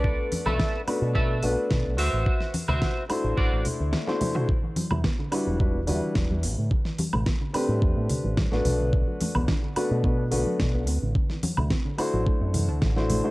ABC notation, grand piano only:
X:1
M:4/4
L:1/16
Q:1/4=108
K:Dmix
V:1 name="Grand piano"
[A,B,DFB]6 [A,B,DFB]2 [A,B,DFB] z [A,B,DFB]4 z2 | z6 [A,DEFc]6- [A,DEFc] [A,DEFc]2 [A,DEFc] | z6 [G,DEFB]2 [G,DEFB] z [G,DEFB]4 z2 | z6 [A,CDGB]6- [A,CDGB] [A,B,DFB]3- |
[A,B,DFB]6 [A,B,DFB]2 [A,B,DFB] z [A,B,DFB]4 z2 | z6 [A,DEFc]6- [A,DEFc] [A,DEFc]2 [A,DEFc] |]